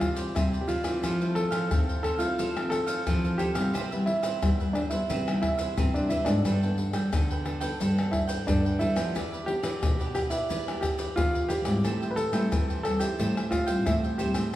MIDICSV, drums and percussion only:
0, 0, Header, 1, 4, 480
1, 0, Start_track
1, 0, Key_signature, 0, "major"
1, 0, Tempo, 675676
1, 735, Time_signature, 4, 2, 24, 8
1, 10341, End_track
2, 0, Start_track
2, 0, Title_t, "Pandeiro"
2, 8, Note_on_c, 9, 54, 51
2, 79, Note_off_c, 9, 54, 0
2, 117, Note_on_c, 9, 54, 61
2, 188, Note_off_c, 9, 54, 0
2, 256, Note_on_c, 9, 54, 62
2, 327, Note_off_c, 9, 54, 0
2, 382, Note_on_c, 9, 54, 31
2, 453, Note_off_c, 9, 54, 0
2, 487, Note_on_c, 9, 54, 55
2, 558, Note_off_c, 9, 54, 0
2, 599, Note_on_c, 9, 54, 60
2, 670, Note_off_c, 9, 54, 0
2, 736, Note_on_c, 9, 54, 66
2, 807, Note_off_c, 9, 54, 0
2, 861, Note_on_c, 9, 54, 31
2, 932, Note_off_c, 9, 54, 0
2, 966, Note_on_c, 9, 54, 58
2, 1037, Note_off_c, 9, 54, 0
2, 1080, Note_on_c, 9, 54, 64
2, 1151, Note_off_c, 9, 54, 0
2, 1216, Note_on_c, 9, 54, 76
2, 1287, Note_off_c, 9, 54, 0
2, 1343, Note_on_c, 9, 54, 32
2, 1414, Note_off_c, 9, 54, 0
2, 1452, Note_on_c, 9, 54, 53
2, 1523, Note_off_c, 9, 54, 0
2, 1561, Note_on_c, 9, 54, 61
2, 1632, Note_off_c, 9, 54, 0
2, 1699, Note_on_c, 9, 54, 63
2, 1770, Note_off_c, 9, 54, 0
2, 1823, Note_on_c, 9, 54, 33
2, 1894, Note_off_c, 9, 54, 0
2, 1930, Note_on_c, 9, 54, 55
2, 2001, Note_off_c, 9, 54, 0
2, 2043, Note_on_c, 9, 54, 61
2, 2114, Note_off_c, 9, 54, 0
2, 2179, Note_on_c, 9, 54, 64
2, 2250, Note_off_c, 9, 54, 0
2, 2307, Note_on_c, 9, 54, 32
2, 2378, Note_off_c, 9, 54, 0
2, 2411, Note_on_c, 9, 54, 55
2, 2482, Note_off_c, 9, 54, 0
2, 2524, Note_on_c, 9, 54, 66
2, 2595, Note_off_c, 9, 54, 0
2, 2662, Note_on_c, 9, 54, 66
2, 2733, Note_off_c, 9, 54, 0
2, 2786, Note_on_c, 9, 54, 34
2, 2857, Note_off_c, 9, 54, 0
2, 2893, Note_on_c, 9, 54, 55
2, 2964, Note_off_c, 9, 54, 0
2, 3007, Note_on_c, 9, 54, 62
2, 3078, Note_off_c, 9, 54, 0
2, 3144, Note_on_c, 9, 54, 74
2, 3215, Note_off_c, 9, 54, 0
2, 3271, Note_on_c, 9, 54, 30
2, 3342, Note_off_c, 9, 54, 0
2, 3376, Note_on_c, 9, 54, 48
2, 3447, Note_off_c, 9, 54, 0
2, 3486, Note_on_c, 9, 54, 60
2, 3557, Note_off_c, 9, 54, 0
2, 3622, Note_on_c, 9, 54, 75
2, 3693, Note_off_c, 9, 54, 0
2, 3750, Note_on_c, 9, 54, 33
2, 3821, Note_off_c, 9, 54, 0
2, 3855, Note_on_c, 9, 54, 51
2, 3926, Note_off_c, 9, 54, 0
2, 3968, Note_on_c, 9, 54, 60
2, 4039, Note_off_c, 9, 54, 0
2, 4103, Note_on_c, 9, 54, 63
2, 4174, Note_off_c, 9, 54, 0
2, 4231, Note_on_c, 9, 54, 31
2, 4302, Note_off_c, 9, 54, 0
2, 4335, Note_on_c, 9, 54, 53
2, 4407, Note_off_c, 9, 54, 0
2, 4447, Note_on_c, 9, 54, 68
2, 4518, Note_off_c, 9, 54, 0
2, 4583, Note_on_c, 9, 54, 67
2, 4654, Note_off_c, 9, 54, 0
2, 4710, Note_on_c, 9, 54, 36
2, 4781, Note_off_c, 9, 54, 0
2, 4816, Note_on_c, 9, 54, 49
2, 4887, Note_off_c, 9, 54, 0
2, 4926, Note_on_c, 9, 54, 64
2, 4997, Note_off_c, 9, 54, 0
2, 5063, Note_on_c, 9, 54, 74
2, 5134, Note_off_c, 9, 54, 0
2, 5190, Note_on_c, 9, 54, 34
2, 5261, Note_off_c, 9, 54, 0
2, 5297, Note_on_c, 9, 54, 49
2, 5368, Note_off_c, 9, 54, 0
2, 5408, Note_on_c, 9, 54, 63
2, 5479, Note_off_c, 9, 54, 0
2, 5546, Note_on_c, 9, 54, 70
2, 5617, Note_off_c, 9, 54, 0
2, 5673, Note_on_c, 9, 54, 34
2, 5744, Note_off_c, 9, 54, 0
2, 5775, Note_on_c, 9, 54, 57
2, 5846, Note_off_c, 9, 54, 0
2, 5888, Note_on_c, 9, 54, 62
2, 5959, Note_off_c, 9, 54, 0
2, 6025, Note_on_c, 9, 54, 68
2, 6096, Note_off_c, 9, 54, 0
2, 6152, Note_on_c, 9, 54, 28
2, 6223, Note_off_c, 9, 54, 0
2, 6258, Note_on_c, 9, 54, 57
2, 6329, Note_off_c, 9, 54, 0
2, 6368, Note_on_c, 9, 54, 59
2, 6439, Note_off_c, 9, 54, 0
2, 6507, Note_on_c, 9, 54, 63
2, 6578, Note_off_c, 9, 54, 0
2, 6633, Note_on_c, 9, 54, 33
2, 6704, Note_off_c, 9, 54, 0
2, 6734, Note_on_c, 9, 54, 53
2, 6805, Note_off_c, 9, 54, 0
2, 6845, Note_on_c, 9, 54, 69
2, 6916, Note_off_c, 9, 54, 0
2, 6981, Note_on_c, 9, 54, 79
2, 7052, Note_off_c, 9, 54, 0
2, 7108, Note_on_c, 9, 54, 33
2, 7179, Note_off_c, 9, 54, 0
2, 7211, Note_on_c, 9, 54, 46
2, 7282, Note_off_c, 9, 54, 0
2, 7323, Note_on_c, 9, 54, 60
2, 7394, Note_off_c, 9, 54, 0
2, 7462, Note_on_c, 9, 54, 68
2, 7533, Note_off_c, 9, 54, 0
2, 7589, Note_on_c, 9, 54, 34
2, 7660, Note_off_c, 9, 54, 0
2, 7691, Note_on_c, 9, 54, 54
2, 7762, Note_off_c, 9, 54, 0
2, 7805, Note_on_c, 9, 54, 63
2, 7876, Note_off_c, 9, 54, 0
2, 7938, Note_on_c, 9, 54, 74
2, 8009, Note_off_c, 9, 54, 0
2, 8064, Note_on_c, 9, 54, 32
2, 8135, Note_off_c, 9, 54, 0
2, 8168, Note_on_c, 9, 54, 59
2, 8239, Note_off_c, 9, 54, 0
2, 8277, Note_on_c, 9, 54, 65
2, 8348, Note_off_c, 9, 54, 0
2, 8416, Note_on_c, 9, 54, 64
2, 8487, Note_off_c, 9, 54, 0
2, 8543, Note_on_c, 9, 54, 32
2, 8614, Note_off_c, 9, 54, 0
2, 8646, Note_on_c, 9, 54, 51
2, 8717, Note_off_c, 9, 54, 0
2, 8759, Note_on_c, 9, 54, 59
2, 8830, Note_off_c, 9, 54, 0
2, 8895, Note_on_c, 9, 54, 77
2, 8966, Note_off_c, 9, 54, 0
2, 9022, Note_on_c, 9, 54, 33
2, 9093, Note_off_c, 9, 54, 0
2, 9128, Note_on_c, 9, 54, 49
2, 9199, Note_off_c, 9, 54, 0
2, 9238, Note_on_c, 9, 54, 62
2, 9309, Note_off_c, 9, 54, 0
2, 9374, Note_on_c, 9, 54, 73
2, 9445, Note_off_c, 9, 54, 0
2, 9500, Note_on_c, 9, 54, 35
2, 9571, Note_off_c, 9, 54, 0
2, 9603, Note_on_c, 9, 54, 57
2, 9674, Note_off_c, 9, 54, 0
2, 9715, Note_on_c, 9, 54, 63
2, 9786, Note_off_c, 9, 54, 0
2, 9850, Note_on_c, 9, 54, 67
2, 9921, Note_off_c, 9, 54, 0
2, 9975, Note_on_c, 9, 54, 30
2, 10046, Note_off_c, 9, 54, 0
2, 10080, Note_on_c, 9, 54, 58
2, 10151, Note_off_c, 9, 54, 0
2, 10190, Note_on_c, 9, 54, 64
2, 10261, Note_off_c, 9, 54, 0
2, 10341, End_track
3, 0, Start_track
3, 0, Title_t, "Tamborim"
3, 8, Note_on_c, 9, 60, 70
3, 79, Note_off_c, 9, 60, 0
3, 256, Note_on_c, 9, 60, 73
3, 327, Note_off_c, 9, 60, 0
3, 599, Note_on_c, 9, 60, 79
3, 670, Note_off_c, 9, 60, 0
3, 736, Note_on_c, 9, 60, 69
3, 807, Note_off_c, 9, 60, 0
3, 1080, Note_on_c, 9, 60, 77
3, 1151, Note_off_c, 9, 60, 0
3, 1216, Note_on_c, 9, 60, 73
3, 1287, Note_off_c, 9, 60, 0
3, 1452, Note_on_c, 9, 60, 71
3, 1523, Note_off_c, 9, 60, 0
3, 1823, Note_on_c, 9, 60, 82
3, 1894, Note_off_c, 9, 60, 0
3, 1930, Note_on_c, 9, 60, 74
3, 2001, Note_off_c, 9, 60, 0
3, 2179, Note_on_c, 9, 60, 65
3, 2250, Note_off_c, 9, 60, 0
3, 2524, Note_on_c, 9, 60, 78
3, 2595, Note_off_c, 9, 60, 0
3, 2662, Note_on_c, 9, 60, 64
3, 2733, Note_off_c, 9, 60, 0
3, 3007, Note_on_c, 9, 60, 68
3, 3078, Note_off_c, 9, 60, 0
3, 3144, Note_on_c, 9, 60, 80
3, 3215, Note_off_c, 9, 60, 0
3, 3376, Note_on_c, 9, 60, 69
3, 3447, Note_off_c, 9, 60, 0
3, 3750, Note_on_c, 9, 60, 82
3, 3821, Note_off_c, 9, 60, 0
3, 3855, Note_on_c, 9, 60, 76
3, 3926, Note_off_c, 9, 60, 0
3, 4103, Note_on_c, 9, 60, 61
3, 4174, Note_off_c, 9, 60, 0
3, 4447, Note_on_c, 9, 60, 82
3, 4518, Note_off_c, 9, 60, 0
3, 4583, Note_on_c, 9, 60, 61
3, 4654, Note_off_c, 9, 60, 0
3, 4926, Note_on_c, 9, 60, 76
3, 4997, Note_off_c, 9, 60, 0
3, 5063, Note_on_c, 9, 60, 82
3, 5134, Note_off_c, 9, 60, 0
3, 5297, Note_on_c, 9, 60, 67
3, 5368, Note_off_c, 9, 60, 0
3, 5673, Note_on_c, 9, 60, 77
3, 5744, Note_off_c, 9, 60, 0
3, 5775, Note_on_c, 9, 60, 69
3, 5846, Note_off_c, 9, 60, 0
3, 6025, Note_on_c, 9, 60, 68
3, 6096, Note_off_c, 9, 60, 0
3, 6368, Note_on_c, 9, 60, 79
3, 6439, Note_off_c, 9, 60, 0
3, 6507, Note_on_c, 9, 60, 65
3, 6578, Note_off_c, 9, 60, 0
3, 6845, Note_on_c, 9, 60, 76
3, 6916, Note_off_c, 9, 60, 0
3, 6981, Note_on_c, 9, 60, 71
3, 7052, Note_off_c, 9, 60, 0
3, 7211, Note_on_c, 9, 60, 69
3, 7282, Note_off_c, 9, 60, 0
3, 7589, Note_on_c, 9, 60, 77
3, 7660, Note_off_c, 9, 60, 0
3, 7691, Note_on_c, 9, 60, 74
3, 7762, Note_off_c, 9, 60, 0
3, 7938, Note_on_c, 9, 60, 64
3, 8009, Note_off_c, 9, 60, 0
3, 8277, Note_on_c, 9, 60, 77
3, 8348, Note_off_c, 9, 60, 0
3, 8416, Note_on_c, 9, 60, 65
3, 8487, Note_off_c, 9, 60, 0
3, 8759, Note_on_c, 9, 60, 78
3, 8830, Note_off_c, 9, 60, 0
3, 8895, Note_on_c, 9, 60, 77
3, 8966, Note_off_c, 9, 60, 0
3, 9128, Note_on_c, 9, 60, 75
3, 9199, Note_off_c, 9, 60, 0
3, 9500, Note_on_c, 9, 60, 78
3, 9571, Note_off_c, 9, 60, 0
3, 9603, Note_on_c, 9, 60, 72
3, 9674, Note_off_c, 9, 60, 0
3, 9850, Note_on_c, 9, 60, 71
3, 9921, Note_off_c, 9, 60, 0
3, 10190, Note_on_c, 9, 60, 77
3, 10261, Note_off_c, 9, 60, 0
3, 10341, End_track
4, 0, Start_track
4, 0, Title_t, "Drums"
4, 8, Note_on_c, 9, 82, 58
4, 8, Note_on_c, 9, 87, 67
4, 79, Note_off_c, 9, 82, 0
4, 79, Note_off_c, 9, 87, 0
4, 117, Note_on_c, 9, 82, 72
4, 188, Note_off_c, 9, 82, 0
4, 256, Note_on_c, 9, 82, 66
4, 256, Note_on_c, 9, 87, 73
4, 327, Note_off_c, 9, 82, 0
4, 327, Note_off_c, 9, 87, 0
4, 382, Note_on_c, 9, 82, 31
4, 453, Note_off_c, 9, 82, 0
4, 487, Note_on_c, 9, 82, 66
4, 558, Note_off_c, 9, 82, 0
4, 599, Note_on_c, 9, 82, 75
4, 670, Note_off_c, 9, 82, 0
4, 736, Note_on_c, 9, 82, 63
4, 736, Note_on_c, 9, 87, 46
4, 807, Note_off_c, 9, 82, 0
4, 807, Note_off_c, 9, 87, 0
4, 861, Note_on_c, 9, 82, 33
4, 932, Note_off_c, 9, 82, 0
4, 1080, Note_on_c, 9, 82, 81
4, 1151, Note_off_c, 9, 82, 0
4, 1216, Note_on_c, 9, 82, 72
4, 1216, Note_on_c, 9, 87, 97
4, 1287, Note_off_c, 9, 82, 0
4, 1287, Note_off_c, 9, 87, 0
4, 1343, Note_on_c, 9, 82, 33
4, 1414, Note_off_c, 9, 82, 0
4, 1561, Note_on_c, 9, 82, 66
4, 1632, Note_off_c, 9, 82, 0
4, 1699, Note_on_c, 9, 82, 72
4, 1699, Note_on_c, 9, 87, 48
4, 1770, Note_off_c, 9, 82, 0
4, 1770, Note_off_c, 9, 87, 0
4, 1823, Note_on_c, 9, 82, 34
4, 1894, Note_off_c, 9, 82, 0
4, 1930, Note_on_c, 9, 82, 63
4, 2001, Note_off_c, 9, 82, 0
4, 2043, Note_on_c, 9, 82, 76
4, 2114, Note_off_c, 9, 82, 0
4, 2179, Note_on_c, 9, 82, 61
4, 2179, Note_on_c, 9, 87, 89
4, 2250, Note_off_c, 9, 82, 0
4, 2250, Note_off_c, 9, 87, 0
4, 2307, Note_on_c, 9, 82, 32
4, 2378, Note_off_c, 9, 82, 0
4, 2411, Note_on_c, 9, 82, 65
4, 2482, Note_off_c, 9, 82, 0
4, 2524, Note_on_c, 9, 82, 74
4, 2595, Note_off_c, 9, 82, 0
4, 2662, Note_on_c, 9, 82, 65
4, 2662, Note_on_c, 9, 87, 43
4, 2733, Note_off_c, 9, 82, 0
4, 2733, Note_off_c, 9, 87, 0
4, 2786, Note_on_c, 9, 82, 32
4, 2857, Note_off_c, 9, 82, 0
4, 3007, Note_on_c, 9, 82, 77
4, 3078, Note_off_c, 9, 82, 0
4, 3144, Note_on_c, 9, 82, 75
4, 3144, Note_on_c, 9, 87, 104
4, 3215, Note_off_c, 9, 82, 0
4, 3215, Note_off_c, 9, 87, 0
4, 3271, Note_on_c, 9, 82, 34
4, 3342, Note_off_c, 9, 82, 0
4, 3486, Note_on_c, 9, 82, 69
4, 3557, Note_off_c, 9, 82, 0
4, 3622, Note_on_c, 9, 82, 72
4, 3622, Note_on_c, 9, 87, 51
4, 3693, Note_off_c, 9, 82, 0
4, 3693, Note_off_c, 9, 87, 0
4, 3750, Note_on_c, 9, 82, 34
4, 3821, Note_off_c, 9, 82, 0
4, 3855, Note_on_c, 9, 87, 66
4, 3926, Note_off_c, 9, 87, 0
4, 3968, Note_on_c, 9, 82, 77
4, 4039, Note_off_c, 9, 82, 0
4, 4103, Note_on_c, 9, 82, 67
4, 4103, Note_on_c, 9, 87, 91
4, 4174, Note_off_c, 9, 82, 0
4, 4174, Note_off_c, 9, 87, 0
4, 4231, Note_on_c, 9, 82, 32
4, 4302, Note_off_c, 9, 82, 0
4, 4335, Note_on_c, 9, 82, 65
4, 4407, Note_off_c, 9, 82, 0
4, 4447, Note_on_c, 9, 82, 72
4, 4518, Note_off_c, 9, 82, 0
4, 4583, Note_on_c, 9, 82, 71
4, 4583, Note_on_c, 9, 87, 45
4, 4654, Note_off_c, 9, 82, 0
4, 4654, Note_off_c, 9, 87, 0
4, 4710, Note_on_c, 9, 82, 34
4, 4781, Note_off_c, 9, 82, 0
4, 4926, Note_on_c, 9, 82, 76
4, 4997, Note_off_c, 9, 82, 0
4, 5063, Note_on_c, 9, 82, 80
4, 5063, Note_on_c, 9, 87, 97
4, 5134, Note_off_c, 9, 82, 0
4, 5134, Note_off_c, 9, 87, 0
4, 5190, Note_on_c, 9, 82, 33
4, 5261, Note_off_c, 9, 82, 0
4, 5408, Note_on_c, 9, 82, 75
4, 5479, Note_off_c, 9, 82, 0
4, 5546, Note_on_c, 9, 82, 73
4, 5546, Note_on_c, 9, 87, 51
4, 5617, Note_off_c, 9, 82, 0
4, 5617, Note_off_c, 9, 87, 0
4, 5673, Note_on_c, 9, 82, 32
4, 5744, Note_off_c, 9, 82, 0
4, 5775, Note_on_c, 9, 87, 62
4, 5846, Note_off_c, 9, 87, 0
4, 5888, Note_on_c, 9, 82, 75
4, 5959, Note_off_c, 9, 82, 0
4, 6025, Note_on_c, 9, 82, 73
4, 6025, Note_on_c, 9, 87, 84
4, 6096, Note_off_c, 9, 82, 0
4, 6096, Note_off_c, 9, 87, 0
4, 6152, Note_on_c, 9, 82, 32
4, 6223, Note_off_c, 9, 82, 0
4, 6368, Note_on_c, 9, 82, 77
4, 6439, Note_off_c, 9, 82, 0
4, 6507, Note_on_c, 9, 82, 64
4, 6507, Note_on_c, 9, 87, 48
4, 6578, Note_off_c, 9, 82, 0
4, 6578, Note_off_c, 9, 87, 0
4, 6633, Note_on_c, 9, 82, 34
4, 6704, Note_off_c, 9, 82, 0
4, 6845, Note_on_c, 9, 82, 71
4, 6916, Note_off_c, 9, 82, 0
4, 6981, Note_on_c, 9, 82, 77
4, 6981, Note_on_c, 9, 87, 102
4, 7052, Note_off_c, 9, 82, 0
4, 7052, Note_off_c, 9, 87, 0
4, 7108, Note_on_c, 9, 82, 33
4, 7179, Note_off_c, 9, 82, 0
4, 7211, Note_on_c, 9, 82, 62
4, 7282, Note_off_c, 9, 82, 0
4, 7323, Note_on_c, 9, 82, 77
4, 7394, Note_off_c, 9, 82, 0
4, 7462, Note_on_c, 9, 82, 63
4, 7462, Note_on_c, 9, 87, 49
4, 7533, Note_off_c, 9, 82, 0
4, 7533, Note_off_c, 9, 87, 0
4, 7589, Note_on_c, 9, 82, 35
4, 7660, Note_off_c, 9, 82, 0
4, 7691, Note_on_c, 9, 82, 69
4, 7691, Note_on_c, 9, 87, 63
4, 7762, Note_off_c, 9, 82, 0
4, 7762, Note_off_c, 9, 87, 0
4, 7805, Note_on_c, 9, 82, 70
4, 7876, Note_off_c, 9, 82, 0
4, 7938, Note_on_c, 9, 82, 65
4, 7938, Note_on_c, 9, 87, 85
4, 8009, Note_off_c, 9, 82, 0
4, 8009, Note_off_c, 9, 87, 0
4, 8064, Note_on_c, 9, 82, 31
4, 8135, Note_off_c, 9, 82, 0
4, 8168, Note_on_c, 9, 82, 70
4, 8239, Note_off_c, 9, 82, 0
4, 8277, Note_on_c, 9, 82, 74
4, 8348, Note_off_c, 9, 82, 0
4, 8416, Note_on_c, 9, 82, 64
4, 8416, Note_on_c, 9, 87, 43
4, 8487, Note_off_c, 9, 82, 0
4, 8487, Note_off_c, 9, 87, 0
4, 8543, Note_on_c, 9, 82, 30
4, 8614, Note_off_c, 9, 82, 0
4, 8646, Note_on_c, 9, 82, 65
4, 8717, Note_off_c, 9, 82, 0
4, 8759, Note_on_c, 9, 82, 77
4, 8830, Note_off_c, 9, 82, 0
4, 8895, Note_on_c, 9, 82, 77
4, 8895, Note_on_c, 9, 87, 94
4, 8966, Note_off_c, 9, 82, 0
4, 8966, Note_off_c, 9, 87, 0
4, 9022, Note_on_c, 9, 82, 31
4, 9093, Note_off_c, 9, 82, 0
4, 9128, Note_on_c, 9, 82, 61
4, 9199, Note_off_c, 9, 82, 0
4, 9238, Note_on_c, 9, 82, 76
4, 9309, Note_off_c, 9, 82, 0
4, 9374, Note_on_c, 9, 82, 69
4, 9374, Note_on_c, 9, 87, 51
4, 9445, Note_off_c, 9, 82, 0
4, 9445, Note_off_c, 9, 87, 0
4, 9500, Note_on_c, 9, 82, 34
4, 9571, Note_off_c, 9, 82, 0
4, 9603, Note_on_c, 9, 82, 60
4, 9603, Note_on_c, 9, 87, 67
4, 9674, Note_off_c, 9, 82, 0
4, 9674, Note_off_c, 9, 87, 0
4, 9715, Note_on_c, 9, 82, 70
4, 9786, Note_off_c, 9, 82, 0
4, 9850, Note_on_c, 9, 82, 72
4, 9850, Note_on_c, 9, 87, 81
4, 9921, Note_off_c, 9, 82, 0
4, 9921, Note_off_c, 9, 87, 0
4, 9975, Note_on_c, 9, 82, 31
4, 10046, Note_off_c, 9, 82, 0
4, 10080, Note_on_c, 9, 82, 63
4, 10151, Note_off_c, 9, 82, 0
4, 10190, Note_on_c, 9, 82, 73
4, 10261, Note_off_c, 9, 82, 0
4, 10341, End_track
0, 0, End_of_file